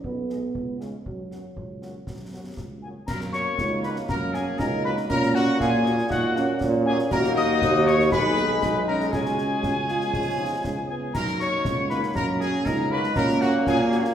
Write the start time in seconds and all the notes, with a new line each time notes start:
0.04 B1 B3, concert bass drum
0.30 G#3 D#4 G#4 D#5, snare
0.55 C#2, concert bass drum
0.80 G#3 C#4 G#4 F5, snare
1.05 F#2 F#3, concert bass drum
1.31 A#3 C#4 F#4 F#5, snare
1.56 C#2, concert bass drum
1.82 A#3 C#4 F#4 F#5, snare
2.07 F#2, concert bass drum, snare
2.32 A#3 C#4 F#4 F#5
2.57 C#2, concert bass drum, snare
2.82 A#3 C#4 F#4 G#4 F#5 G#5
3.07 F#2 F#3 A#3 A#4 A#5, concert bass drum, snare, crash
3.20 snare
3.33 A#3 C#4 F#4 C#5 C#6, snare
3.58 C#2 D#4, concert bass drum, snare
3.83 A#3 C#4 F#4 B4 B5, snare
3.96 snare
4.09 F#2 C#4 A#4 A#5, concert bass drum, snare
4.33 A#3 C#4 F#4 G#4 G#5, snare
4.59 C#2 D#4 A#4 A#5, concert bass drum, snare
4.84 A#3 C#4 F#4 B4 B5
4.97 snare
5.09 A#2 F#3 A#3 C#4 A#4 A#5, concert bass drum, snare, crash
5.23 snare
5.35 A#3 C#4 F#4 F#5, snare
5.59 A#2 F4 G#4 G#5, concert bass drum, snare
5.85 A#3 C#4 F#4, snare
5.98 snare
6.10 A#2 D#4 F#4 F#5, concert bass drum, snare
6.36 A#3 C#4 F#4, snare
6.61 A#2, concert bass drum, snare
6.85 A#3 C#4 F#4 G#4 G#5
6.99 snare
7.10 D#2 F#3 A#3 D#4 F#4 A#4 A#5, concert bass drum, snare, crash
7.24 snare
7.35 D#5 D#6, snare
7.62 D#2, concert bass drum, snare
7.86 C#5 C#6, snare
7.99 snare
8.11 B1 D#3 G#3 D#4 G#4 B4 B5, concert bass drum, snare
8.37 B3, snare
8.62 B1 D#4, concert bass drum, snare
8.87 C#4 A#4 A#5
9.00 snare
9.12 C#2 F#3 G#3 C#4 F#4 G#4 G#5, concert bass drum, snare, crash
9.25 snare
9.38 snare
9.62 C#2 C#4, concert bass drum, snare
9.88 F4, snare
10.01 snare
10.12 C#2 F3 G#3 C#4 F4, concert bass drum, snare
10.38 D#4
10.63 C#2 C#4, concert bass drum, snare
10.89 B3 G#4 G#5
11.14 F#2 F#3 A#3 D#4 A#4 A#5, concert bass drum, snare, crash
11.27 snare
11.40 A#3 C#4 F#4 C#5 C#6, snare
11.65 C#2 C#4, concert bass drum, snare
11.89 A#3 C#4 D#4 F#4 B4 B5, snare
12.03 snare
12.15 F#2 C#4 A#4 A#5, concert bass drum, snare
12.40 A#3 C#4 F#4 G#4 G#5, snare
12.65 C#2 D#4 A#4 A#5, concert bass drum, snare
12.91 A#3 C#4 F#4 B4 B5
13.03 snare
13.16 A#2 F#3 A#3 C#4 A#4 A#5, concert bass drum, snare, crash
13.29 snare
13.41 A#3 C#4 F#4 F#5, snare
13.66 A#2 C#4 G#4 G#5, concert bass drum, snare
13.92 A#3 C#4 F4 F#4, snare
14.04 snare